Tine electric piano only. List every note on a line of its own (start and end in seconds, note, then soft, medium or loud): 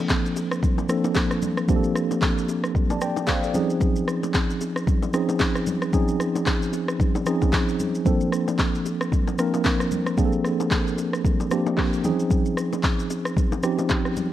0.00 0.42 F3 medium
0.00 0.42 A#3 medium
0.00 0.42 C4 medium
0.00 0.42 D4 medium
0.00 0.43 A4 medium
0.89 1.54 F3 medium
0.89 1.54 A#3 medium
0.89 1.55 C4 medium
0.89 1.55 D4 medium
0.89 1.55 A4 medium
1.68 2.54 F3 medium
1.68 2.55 A#3 medium
1.68 2.55 C4 medium
1.68 2.55 D4 medium
1.68 1.77 G4 medium
1.76 2.58 A4 medium
2.91 3.01 D5 medium
2.91 3.01 A5 medium
3.02 3.27 D5 medium
3.02 3.27 G5 medium
3.29 3.43 C5 medium
3.29 3.43 F5 medium
3.44 3.69 A4 medium
3.44 3.69 D5 medium
3.54 4.40 F3 medium
3.54 4.40 C4 medium
3.54 4.40 C#4 medium
3.54 4.41 D#4 medium
3.54 4.41 G#4 loud
5.14 5.79 F3 medium
5.14 5.79 C4 medium
5.14 5.79 C#4 medium
5.14 5.80 D#4 medium
5.14 5.80 G#4 loud
5.93 6.79 F3 medium
5.93 6.79 C4 medium
5.93 6.79 C#4 medium
5.93 6.80 D#4 medium
5.93 6.80 G#4 medium
7.26 7.91 F3 medium
7.26 7.92 C4 medium
7.26 7.92 C#4 medium
7.26 7.92 D#4 medium
7.26 7.92 G#4 medium
8.06 8.92 F3 medium
8.06 8.92 A#3 medium
8.06 8.92 C4 medium
8.06 8.92 D4 medium
8.06 8.92 A4 medium
9.38 10.04 F3 medium
9.38 10.04 A#3 medium
9.38 10.04 C4 medium
9.38 10.04 D4 medium
9.38 10.05 A#4 medium
10.18 11.04 F3 medium
10.18 11.04 A#3 medium
10.18 11.04 C4 medium
10.18 11.04 D4 medium
10.18 10.26 G#4 medium
10.26 11.08 A4 medium
11.51 12.04 F3 medium
11.51 12.04 A#3 medium
11.51 12.03 C4 medium
11.51 12.04 D4 medium
11.51 12.05 G4 medium
12.04 12.11 E3 medium
12.04 12.90 C4 medium
12.04 12.90 C#4 medium
12.04 12.90 D#4 medium
12.04 12.90 G#4 loud
12.10 12.93 F3 medium
13.63 14.29 F3 medium
13.63 14.29 C4 medium
13.63 14.29 C#4 medium
13.63 14.29 D#4 medium
13.63 14.29 G4 medium